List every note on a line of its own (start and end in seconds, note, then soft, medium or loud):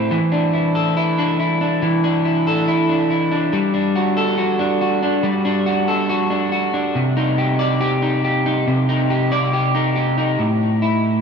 0.00 0.19 A2 medium
0.00 0.19 C4 medium
0.00 0.35 E4 medium
0.00 0.75 A4 medium
0.11 1.81 E3 medium
0.32 1.18 D4 medium
0.53 0.96 E4 medium
0.75 2.47 A4 medium
0.97 1.38 E4 medium
1.18 1.61 D4 medium
1.40 2.24 E4 medium
1.61 2.03 D4 medium
1.82 3.53 E3 medium
2.04 2.89 D4 medium
2.25 2.67 E4 medium
2.47 4.16 A4 medium
2.68 3.09 E4 medium
2.89 3.31 D4 medium
3.10 3.62 E4 medium
3.32 3.73 D4 medium
3.53 5.23 G3 medium
3.74 4.59 D4 medium
3.96 4.37 F#4 medium
4.17 5.87 A4 medium
4.38 4.80 F#4 medium
4.59 5.02 D4 medium
4.81 5.65 F#4 medium
5.03 5.44 D4 medium
5.23 8.73 G3 medium
5.45 6.30 D4 medium
5.66 6.08 F#4 medium
5.88 7.04 A4 medium
6.09 6.51 F#4 medium
6.30 6.73 D4 medium
6.52 7.04 F#4 medium
6.74 7.16 D4 medium
6.95 8.66 C3 medium
7.17 8.01 D#4 medium
7.38 7.80 G4 medium
7.59 9.30 D5 medium
7.81 8.24 G4 medium
8.02 8.45 D#4 medium
8.24 9.10 G4 medium
8.46 8.88 D#4 medium
8.67 10.39 C3 medium
8.89 9.73 D#4 medium
9.10 9.53 G4 medium
9.32 10.47 D5 medium
9.53 9.95 G4 medium
9.75 10.16 D#4 medium
9.96 10.82 G4 medium
10.18 10.48 D#4 medium
10.39 11.21 A2 medium
10.82 11.21 E4 soft